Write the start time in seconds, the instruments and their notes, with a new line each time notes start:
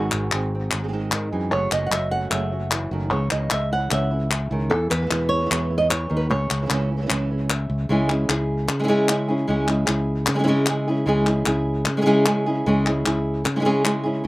Already playing: fingered electric bass G#1, nylon-string guitar G#2 D#3 G#3 C4 D#4 F#4 G#4
0.11 fingered electric bass G#1, clap
0.32 fingered electric bass G#1, nylon-string guitar C4 D#4 G#4, clap
0.55 nylon-string guitar C4
0.71 fingered electric bass G#1, muted nylon-string guitar stroke, clap
0.79 nylon-string guitar G#3 C4 D#4 G#4
0.84 nylon-string guitar G#3 C4 D#4 G#4
0.88 nylon-string guitar G#3 C4 D#4 G#4
0.93 nylon-string guitar D#3 G#3 C4 D#4 G#4
1.12 fingered electric bass G#2, nylon-string guitar D#3 G#3 C4 D#4 G#4, clap
1.32 fingered electric bass F#2, nylon-string guitar E3 C4 D#4 G#4
1.52 fingered electric bass F#1, nylon-string guitar C#3 F#3 A3 C#4 F#4 C#5
1.72 fingered electric bass F#1, nylon-string guitar A3 C#4 D#5, clap
1.86 nylon-string guitar F#5
1.91 fingered electric bass F#1, nylon-string guitar E5, muted nylon-string guitar stroke, clap
2.11 nylon-string guitar A3 C#4 F#4 F#5
2.31 fingered electric bass F#1, nylon-string guitar C#3 F#3 A3 C#4 F#4 E5, clap
2.52 nylon-string guitar A3 C#4 F#4
2.71 nylon-string guitar E3, muted nylon-string guitar stroke, clap
2.91 fingered electric bass F#1, nylon-string guitar D#3 A3 C#4 F#4
3.11 fingered electric bass C#2, nylon-string guitar C#3 E3 G#3 C#4 E4 C#5
3.31 fingered electric bass C#2, nylon-string guitar G#3 C#4 E4 D#5, clap
3.50 fingered electric bass C#2, nylon-string guitar E5, muted nylon-string guitar stroke, clap
3.71 nylon-string guitar G#3 C#4 E4 F#5
3.91 fingered electric bass C#2, nylon-string guitar C#3 E3 G#3 C#4 E4 E5, clap
4.11 nylon-string guitar G#3 C#4 E4
4.31 nylon-string guitar C#3, muted nylon-string guitar stroke, clap
4.50 fingered electric bass C#2, nylon-string guitar D#3 G#3 C#4 E4
4.70 fingered electric bass E2, nylon-string guitar E3 A4, muted nylon-string guitar stroke
4.90 fingered electric bass E2, nylon-string guitar B4, clap
5.02 nylon-string guitar E3 G#3 B3 E4
5.07 nylon-string guitar E3 G#3 B3 E4
5.11 fingered electric bass E2, nylon-string guitar B2 E3 G#3 B3 E4, clap
5.29 nylon-string guitar G#3 B3 E4 C#5
5.41 nylon-string guitar E3 G#3 B3 E4
5.46 nylon-string guitar E3 G#3 B3 E4
5.50 fingered electric bass E2, nylon-string guitar B2 E3 G#3 B3 E4, clap
5.70 nylon-string guitar G#3 B3 E4
5.78 nylon-string guitar D#5
5.90 nylon-string guitar E3 C#5, muted nylon-string guitar stroke, clap
6.10 fingered electric bass D#2, nylon-string guitar D#3
6.17 nylon-string guitar B4
6.30 fingered electric bass C#2, nylon-string guitar C#3 C#5, muted nylon-string guitar stroke
6.50 fingered electric bass C#2, clap
6.61 nylon-string guitar E3 G#3 C#4 E4
6.66 nylon-string guitar E3 G#3 C#4 E4
6.70 fingered electric bass C#2, nylon-string guitar C#3 E3 G#3 C#4 E4, clap
6.91 nylon-string guitar G#3 C#4 E4
6.97 nylon-string guitar E3 G#3 C#4 E4
7.01 nylon-string guitar E3 G#3 C#4 E4
7.06 nylon-string guitar E3 G#3 C#4 E4, clap
7.10 fingered electric bass C#2, nylon-string guitar C#3 E3 G#3 C#4 E4
7.31 nylon-string guitar G#3 C#4 E4
7.50 nylon-string guitar E5, muted nylon-string guitar stroke, clap
7.70 fingered electric bass C#2
7.89 fingered electric bass C#2, nylon-string guitar C#3 G#3 C#4 E4 G#4
8.09 nylon-string guitar C#4 E4 G#4, clap
8.29 fingered electric bass C#2, nylon-string guitar C#4 E4 G#4, clap
8.68 fingered electric bass C#3, muted nylon-string guitar stroke, clap
8.79 nylon-string guitar G#3 C#4 E4 G#4
8.84 nylon-string guitar G#3 C#4 E4 G#4
8.88 nylon-string guitar C#3 G#3 C#4 E4 G#4
9.09 nylon-string guitar G#3 C#4 E4 G#4, clap
9.28 nylon-string guitar C#4 E4 G#4
9.47 fingered electric bass C#2, nylon-string guitar C#3 G#3 C#4 E4 G#4
9.67 nylon-string guitar C#4 E4 G#4, clap
9.86 fingered electric bass C#2, nylon-string guitar C#4 E4 G#4, clap
10.26 fingered electric bass C#3, muted nylon-string guitar stroke, clap
10.34 nylon-string guitar G#3 C#4 E4 G#4
10.39 nylon-string guitar G#3 C#4 E4 G#4
10.44 nylon-string guitar C#3 G#3 C#4 E4 G#4
10.48 nylon-string guitar G#3 C#4 E4 G#4
10.66 nylon-string guitar G#3 C#4 E4 G#4, clap
10.88 nylon-string guitar C#4 E4 G#4
11.06 fingered electric bass C#2, nylon-string guitar C#3 G#3 C#4 E4 G#4
11.26 nylon-string guitar C#4 E4 G#4, clap
11.46 fingered electric bass C#2, nylon-string guitar C#4 E4 G#4, clap
11.85 fingered electric bass C#3, muted nylon-string guitar stroke, clap
11.97 nylon-string guitar G#3 C#4 E4 G#4
12.01 nylon-string guitar G#3 C#4 E4 G#4
12.06 nylon-string guitar C#3 G#3 C#4 E4 G#4
12.26 nylon-string guitar G#3 C#4 E4 G#4, clap
12.46 nylon-string guitar C#4 E4 G#4
12.66 fingered electric bass C#2, nylon-string guitar C#3 G#3 C#4 E4 G#4
12.86 nylon-string guitar C#4 E4 G#4, clap
13.06 fingered electric bass C#2, nylon-string guitar C#4 E4 G#4, clap
13.44 fingered electric bass C#3, muted nylon-string guitar stroke, clap
13.56 nylon-string guitar G#3 C#4 E4 G#4
13.60 nylon-string guitar G#3 C#4 E4 G#4
13.65 nylon-string guitar C#3 G#3 C#4 E4 G#4
13.84 nylon-string guitar G#3 C#4 E4 G#4, clap
14.04 nylon-string guitar C#4 E4 G#4
14.24 nylon-string guitar C#3